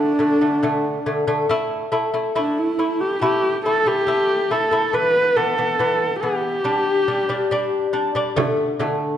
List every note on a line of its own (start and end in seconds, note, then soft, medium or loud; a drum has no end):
0.00 0.11 D3 medium
0.00 0.11 A3 medium
0.00 1.07 D4 medium
0.19 0.37 D3 medium
0.19 0.37 A3 medium
0.41 0.59 D3 medium
0.41 0.59 A3 medium
0.63 0.97 D3 medium
0.63 0.98 A3 medium
1.06 1.24 D3 medium
1.06 1.24 A3 medium
1.27 1.45 D3 medium
1.27 1.45 A3 medium
1.49 1.84 A3 medium
1.49 1.84 E4 loud
1.92 2.09 A3 medium
1.92 2.09 E4 medium
2.14 2.31 A3 medium
2.14 2.31 E4 medium
2.35 2.70 A3 medium
2.35 2.60 D4 medium
2.35 2.70 E4 medium
2.59 3.02 E4 medium
2.79 3.13 A3 medium
2.79 3.13 E4 medium
3.01 3.22 G4 medium
3.21 3.56 A3 medium
3.21 3.56 E4 loud
3.21 3.62 G4 medium
3.65 3.82 A3 medium
3.65 3.82 E4 medium
3.65 3.89 A4 medium
3.86 4.03 A3 medium
3.86 4.03 E4 medium
3.86 4.53 G4 loud
4.07 4.41 A3 medium
4.07 4.42 E4 medium
4.51 4.68 A3 medium
4.51 4.68 E4 medium
4.51 4.95 A4 medium
4.71 4.89 A3 medium
4.71 4.89 E4 medium
4.93 5.28 E3 medium
4.93 5.28 B3 medium
4.93 5.37 B4 loud
5.36 5.54 E3 medium
5.36 5.54 B3 medium
5.36 6.19 A4 medium
5.58 5.75 E3 medium
5.58 5.75 B3 medium
5.79 6.14 E3 medium
5.79 6.14 B3 medium
6.20 6.57 E3 medium
6.20 6.57 B3 medium
6.20 7.89 G4 medium
6.64 6.99 G3 medium
6.64 6.99 D4 medium
7.08 7.25 G3 medium
7.08 7.25 D4 medium
7.29 7.46 G3 medium
7.29 7.47 D4 medium
7.51 7.86 G3 medium
7.51 7.86 D4 loud
7.93 8.11 G3 medium
7.93 8.11 D4 medium
8.15 8.32 G3 medium
8.15 8.33 D4 loud
8.36 8.71 D3 loud
8.36 8.71 A3 loud
8.36 frame drum medium
8.79 9.14 D3 medium
8.79 9.15 A3 medium
8.79 frame drum medium